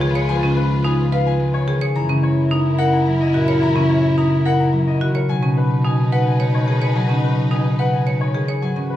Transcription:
Already playing: bass clarinet C#2, harp C#3 F3 G#3, french horn F4, violin section F4 B4
0.01 harp D#3, marimba G#4
0.15 grand piano G#4, marimba C#5
0.29 harp F3, grand piano G#5
0.43 harp C#3, marimba C#4
0.57 grand piano B4
0.84 marimba D#4, grand piano G#5
1.12 marimba B4, grand piano F5
1.27 grand piano G#5
1.40 harp G#3
1.54 grand piano C#5
1.68 harp D#3, marimba G#4
1.81 grand piano G#4, marimba C#5
1.95 bass clarinet F#2, harp E3, french horn E4, violin section E4 A#4, grand piano A#5
2.09 harp C#3, marimba C#4
2.23 grand piano C#5
2.51 marimba D#4, grand piano A#5
2.79 marimba A#4, grand piano F#5
2.93 grand piano A#5
3.07 harp F#3
3.21 grand piano D#5
3.34 harp A#2, marimba F#4
3.48 grand piano A#4, marimba C#5
3.62 harp E3, grand piano A#5
3.76 harp C#3, marimba C#4
3.90 grand piano C#5
4.18 marimba D#4, grand piano A#5
4.46 marimba A#4, grand piano F#5
4.60 grand piano A#5
4.73 harp F#3
4.88 grand piano D#5
5.01 harp D#3, marimba F#4
5.15 grand piano A#4, marimba C#5
5.29 bass clarinet B2, harp F#3, french horn D#4, violin section D#4 B4, grand piano G#5
5.42 harp C#3, marimba C#4
5.57 grand piano B4
5.85 marimba D#4, grand piano G#5
6.12 marimba B4, grand piano F#5
6.27 grand piano G#5
6.40 harp G#3, marimba C#5
6.54 grand piano C#5
6.67 harp D#3, marimba G#4
6.82 grand piano G#4, marimba C#5
6.95 harp F#3, grand piano G#5
7.09 harp C#3, marimba C#4
7.24 grand piano B4
7.51 marimba D#4, grand piano G#5
7.79 marimba B4, grand piano F#5
7.93 grand piano G#5
8.06 harp G#3, marimba C#5
8.21 grand piano C#5
8.34 harp D#3, marimba G#4
8.48 grand piano G#4, marimba C#5
8.62 bass clarinet G#2, harp F#3, french horn F#4, violin section F#4 B4, grand piano G#5
8.76 harp C#3, marimba C#4
8.90 grand piano B4

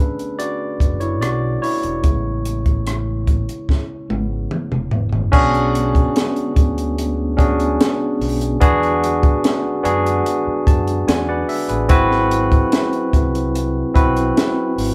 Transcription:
Already playing: tine electric piano D3 A3 B3 C#4 D4 G#4 A4 B4
0.19 closed hi-hat
0.39 tine electric piano F#4 D5, closed hi-hat
0.80 fingered electric bass F#1, kick, closed hi-hat
1.00 tine electric piano E4 C#5, closed hi-hat
1.21 fingered electric bass B1, tine electric piano F#4 D5, cross-stick, closed hi-hat
1.62 tine electric piano E4 C#5, open hi-hat
1.83 fingered electric bass E1, closed hi-hat
2.03 fingered electric bass A1, tine electric piano C#3 G#3 B3, kick, closed hi-hat
2.45 closed hi-hat
2.66 kick, closed hi-hat
2.87 cross-stick, closed hi-hat
3.27 kick, closed hi-hat
3.49 closed hi-hat
3.69 kick, snare
4.09 fingered electric bass G#1, tine electric piano C#3 G#3 B3, high tom
4.51 mid tom
4.71 fingered electric bass E1, mid tom
4.91 fingered electric bass E1, floor tom
5.13 fingered electric bass F#1, floor tom
5.32 fingered electric bass B1, tonewheel organ D3 G#3 B3, tine electric piano C#4 D4 F#4 G#4, kick, crash
5.55 closed hi-hat
5.75 closed hi-hat
5.95 kick, closed hi-hat
6.16 snare, closed hi-hat
6.36 closed hi-hat
6.56 fingered electric bass D2, kick, closed hi-hat
6.78 closed hi-hat
6.98 closed hi-hat
7.37 tine electric piano C#4 D4 F#4 G#4, kick, closed hi-hat
7.60 closed hi-hat
7.81 snare, closed hi-hat
8.21 fingered electric bass B1, open hi-hat
8.41 closed hi-hat
8.60 fingered electric bass E2, tonewheel organ D3 G#3 F#4, tine electric piano B3 D4 F#4 G#4, kick, closed hi-hat
8.83 closed hi-hat
9.04 closed hi-hat
9.23 kick, closed hi-hat
9.44 snare, closed hi-hat
9.83 fingered electric bass F#2, tine electric piano B3 D4 F#4 G#4, closed hi-hat
10.06 closed hi-hat
10.26 closed hi-hat
10.47 muted fingered electric bass stroke
10.67 fingered electric bass F#2, tine electric piano A5, kick, closed hi-hat
10.87 closed hi-hat
11.08 fingered electric bass E2, tine electric piano D5 F#5 G#5, snare, closed hi-hat
11.29 tine electric piano B4 D5 F#5
11.49 tine electric piano E5, open hi-hat
11.69 fingered electric bass A1, tine electric piano G#4 B4, closed hi-hat
11.89 fingered electric bass G#1, tonewheel organ F#3 C4 E4, tine electric piano C4 E4 F#4 B4, kick, closed hi-hat
12.11 snare
12.31 closed hi-hat
12.52 kick, closed hi-hat
12.72 snare, closed hi-hat
12.93 closed hi-hat
13.13 fingered electric bass C2, kick, closed hi-hat
13.35 closed hi-hat
13.55 closed hi-hat
13.94 fingered electric bass B1, tine electric piano C4 E4 F#4 B4, kick, closed hi-hat
14.16 closed hi-hat
14.37 snare, closed hi-hat
14.78 fingered electric bass G#1, open hi-hat

